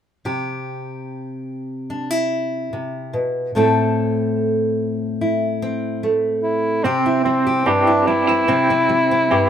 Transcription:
0.25 C3 G4
1.90 D4
2.11 E4
2.73 C3
3.13 B2
3.55 A2 A3 C4 E4 A4
5.21 E4
5.62 C4
6.03 A3
6.43 E4
6.84 C3 C4 G4
7.06 E4
7.25 G3 C4
7.47 G4
7.66 G2 C4 D4 E4 G4
7.87 E4
8.07 G3 D4 E4
8.27 C4 E4
8.48 C3 C4
8.70 C4
8.89 G3
9.11 C4
9.31 G2 C4 E4 G4

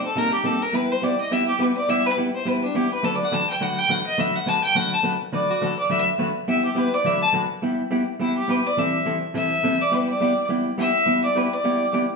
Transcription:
0.06 A4
0.15 C3 G3 A#3 D#4 G4 A#4
0.34 G4
0.44 C3 G3 A#3 D#4 G4 A4
0.62 A#4
0.73 G3 B3 E4 G4 B4
0.91 C5
1.02 G3 B3 E4 G4 D5
1.21 D#5
1.31 G3 B3 E4 G4 E5
1.48 G4
1.59 G3 B3 E4 G4 B4
1.78 D5
1.89 G3 B3 E4 G4 E5
2.06 B4
2.17 G3 B3 E4 G4
2.35 C5
2.45 G3 B3 E4 G4 B4
2.65 D4
2.75 G3 B3 E4 G4
2.93 B4
3.03 D3 F#3 A3 D4 F#4 A4 B4
3.15 D5
3.24 F#5
3.32 D3 F#3 A3 D4 F#4 B4 A5
3.50 G5
3.60 D3 F#3 A3 D4 F#4 B4 F#5
3.79 G5
3.89 D3 F#3 A3 D4 F#4 B4 F#5
4.07 D#5
4.18 D3 F#3 A3 D4 F#4 B4 E5
4.35 F#5
4.46 D3 F#3 A3 D4 F#4 B4 A5
4.64 G5
4.75 D3 F#3 A3 D4 F#4 B4 F#5
4.93 A5
5.03 D3 F#3 A3 D4 F#4 B4
5.32 D3 F#3 A3 D4 F#4 B4 D5
5.51 F#4
5.61 D3 F#3 A3 D4 F#4 A4 B4
5.79 D5
5.89 D3 F#3 A3 D4 F#4 B4 E5
6.18 D3 F#3 A3 D4 F#4 B4
6.48 G3 B3 E4 G4 E5
6.65 G4
6.75 G3 B3 E4 G4 B4
6.94 D5
7.04 D3 F#3 A3 D4 F#4 B4 E5
7.22 A5
7.33 D3 F#3 A3 D4 F#4 B4
7.62 G3 B3 E4 G4
7.91 G3 B3 E4 G4
8.20 G3 B3 E4 G4
8.37 G4
8.48 G3 B3 E4 G4 B4
8.66 D5
8.77 C3 E3 G3 C4 E4 A4 E5
9.05 C3 E3 G3 C4 E4 A4
9.34 C3 E3 G3 C4 E4 A4 E5
9.63 C3 E3 G3 C4 E4 A4
9.81 D5
9.91 G3 B3 E4 G4 B4
10.10 D5
10.21 G3 B3 E4 G4
10.49 G3 B3 E4 G4
10.78 G3 B3 E4 G4 E5
11.06 G3 B3 E4 G4
11.24 D5
11.35 G3 B3 E4 G4 B4
11.53 D5
11.64 G3 B3 E4 G4
11.93 G3 B3 E4 G4

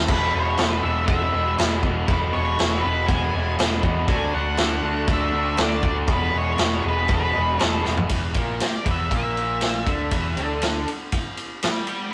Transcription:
Already playing: E3 E4
0.08 E1 E2 B2 E3 G#3 B3 B4, kick, crash
0.12 E4
0.34 E1 E2 B2 E3 G#3 B3 E4 C#5
0.58 E1 E2 B2 E3 G#3 B3 E4, snare, crash
0.82 E1 E2 B2 E3 G#3 B3 E4 E5
1.06 E1 E2 B2 E3 G#3 B3 E4 E5, kick, crash
1.32 E1 E2 B2 E3 G#3 B3 E4
1.57 E1 E2 B2 E3 G#3 B3 E4, snare, crash
1.83 E1 E2 B2 E3 G#3 B3 E4, kick
2.07 E1 E2 B2 E3 G#3 B3 E4 B4, kick, crash
2.33 E1 E2 B2 E3 G#3 B3 E4 C#5
2.57 E1 E2 B2 E3 G#3 B3 E4, snare, crash
2.81 E1 E2 B2 E3 B4
2.85 G#3 B3 E4
3.07 E1 E2 B2 E3 G#5, kick, crash
3.11 G#3 B3 E4
3.32 E1 E2 B2 E3 G#3 B3 E4
3.58 E1 E2 B2 E3 G#3 B3 E4, snare, crash
3.82 E2 B2 E3 G#3 B3 E4, kick
4.07 D2 D3 A3 D4 F#4 G#5, kick, crash
4.33 D2 D3 A3 D4 F#4 F#5
4.57 D2 D3 A3 D4 F#4, snare, crash
4.82 D2 D3 A3 D4 F#4
5.07 D2 D3 A3 D4 F#4, kick, crash
5.13 E5
5.32 D2 D3 A3 D4 F#4
5.57 D2 D3 A3 D4 F#4, snare, crash
5.62 D5
5.82 D2 D3 A3 D4 F#4, kick
6.07 E1 E2 B2 E3 G#3 B3 G#4, kick, crash
6.12 B4
6.32 E1 E2 B2 E3 G#3 B3 G#4
6.38 C#5
6.57 E1 E2 B2 E3 G#3 B3 G#4, snare, crash
6.82 E1 E2 B2 E3 G#3 B3 G#4
6.89 B4
7.07 E1 E2 B2 E3 G#3 B3 G#4, kick, crash
7.14 B4
7.33 E1 E2 B2 E3 G#3 B3 G#4
7.58 E1 E2 B2 E3 G#3 B3 G#4, snare, crash
7.65 A4
7.83 E1 E2 B2 E3 G#3 B3 G#4, snare
7.97 floor tom
8.09 E1 E2 E3, kick, ride
8.34 A#1 A#2 A#3, kick, ride
8.60 G4, muted overdriven electric guitar stroke, snare, ride
8.76 D5
8.83 E1 E2 E3, kick, ride
8.91 E5
9.10 A#1 A#2 A#3, kick, ride
9.16 E5
9.37 ride
9.61 snare, ride
9.86 D2 D3 D4, kick, ride
10.11 E1 E2 E3, kick, ride
10.35 D2 D3 D4, ride
10.62 snare, ride
10.86 muted picked electric bass stroke, muted overdriven electric guitar stroke, ride
11.12 kick, ride
11.37 ride
11.63 D5 G5, snare, ride
11.87 D5 G5, ride
12.11 B4

